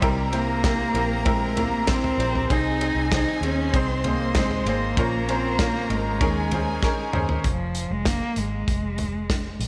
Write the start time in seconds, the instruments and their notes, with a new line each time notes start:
Already playing: cello G3
0.01 fingered electric bass C2, upright piano C3 C4 E4 G4 A#4, violin section A#4 A#5, kick, ride
0.32 cello A#3, upright piano C4 E4 G4 C5, ride
0.64 upright piano C4 E4 G4 A#4, kick, snare, ride
0.94 fingered electric bass A#1, upright piano C4 E4 G4 A#4, ride
1.25 cello G#3, upright piano C4 E4 G4 A#4, kick, ride
1.56 cello A#3, upright piano C4 E4 G4 A#4, floor tom, ride
1.87 upright piano C4 E4 G4 C5, cello C4, kick, snare, ride
2.04 floor tom
2.18 fingered electric bass A#1, upright piano C4 E4 G4 C5, ride
2.35 floor tom
2.50 fingered electric bass C2, upright piano C3 C4 D#4 G#4 C5, cello D#4, violin section G#4 G#5, kick, ride
2.81 upright piano C4 D#4 G#4 C5, ride
2.95 fingered electric bass C2
3.12 upright piano C4 D#4 G#4 C5, cello D#4, kick, snare, ride
3.41 fingered electric bass D#2, upright piano C4 D#4 G#4 C5, ride
3.45 cello C#4
3.73 fingered electric bass C2, upright piano C4 D#4 G#4 C5, violin section C5 C6, kick, ride
3.78 cello C4
4.04 cello A#3, upright piano C4 D#4 G#4 C5, floor tom, ride
4.35 cello G#3, upright piano C4 D#4 G#4 C5, kick, snare, ride
4.51 floor tom
4.65 fingered electric bass G#1, cello A#3, upright piano C4 D#4 G#4 C5, ride
4.97 fingered electric bass A#1, upright piano A#2 C#4 F4 A#4 C5, violin section A#4 A#5, kick, ride
5.29 cello C4, upright piano C#4 F4 A#4 C5, ride
5.59 cello A#3, upright piano C#4 F4 A#4 C#5, kick, snare, ride
5.89 fingered electric bass G#1, cello G#3, upright piano C#4 F4 A#4 D#5, ride
6.20 fingered electric bass D#2, upright piano D#3 C#4 D#4 G#4 A#4, violin section G#4 G#5, kick, ride
6.51 upright piano C#4 D#4 G#4 C5, floor tom, ride
6.83 upright piano C#4 D#4 G#4 A#4, kick, snare
7.13 fingered electric bass D#2, upright piano C#4 D#4 G#4 C5, mid tom
7.29 floor tom
7.44 fingered electric bass F1, cello F3, kick, closed hi-hat
7.75 closed hi-hat
7.90 fingered electric bass F1, cello G#3
8.05 cello A#3, kick, snare, closed hi-hat
8.36 fingered electric bass G#1, cello G#3, closed hi-hat
8.67 fingered electric bass F1, kick, closed hi-hat
8.98 closed hi-hat, floor tom
9.30 kick, snare, closed hi-hat
9.59 fingered electric bass A#1, closed hi-hat